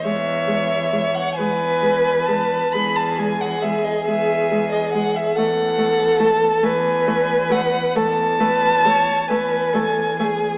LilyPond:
<<
  \new Staff \with { instrumentName = "Violin" } { \time 12/8 \key e \major \tempo 4. = 45 e''4~ e''16 fis''16 gis''4 a''8 b''16 a''16 gis''16 fis''16 e''16 dis''16 e''8. dis''16 fis''16 e''16 | fis''4 a''8 gis''4 fis''8 a''4. gis''4. | }
  \new Staff \with { instrumentName = "Violin" } { \time 12/8 \key e \major cis''4. b'4. gis'2. | a'4. b'4. a'8 b'8 cis''8 b'8 a'8 gis'8 | }
  \new Staff \with { instrumentName = "Viola" } { \clef bass \time 12/8 \key e \major gis8 gis8 gis8 gis8 gis8 gis8 gis8 gis8 gis8 gis8 gis8 gis8 | a8 a8 a8 a8 a8 a8 a8 a8 a8 a8 a8 a8 | }
  \new Staff \with { instrumentName = "Cello" } { \clef bass \time 12/8 \key e \major e,4. e,4. e,4. e,4. | e,4. e,4. e,4. e,4. | }
>>